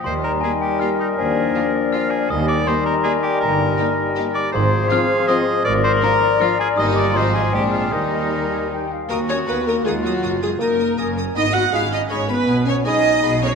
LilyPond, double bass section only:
\new Staff \with { instrumentName = "Double bass section" } { \clef bass \time 3/4 \key ees \major \tempo 4 = 160 ees,4 r2 | ees,4 r2 | ees,4 r2 | g,,4 r2 |
aes,,4 r2 | aes,,4 r2 | g,,4 aes,,4 bes,,4 | ees,2~ ees,8 r8 |
\key ees \minor ees,4 ees,4 ees,4 | ges,,4 ges,,4 ges,,4 | aes,,4 aes,,4 aes,,4 | ces,4 ces,4 ces,4 | }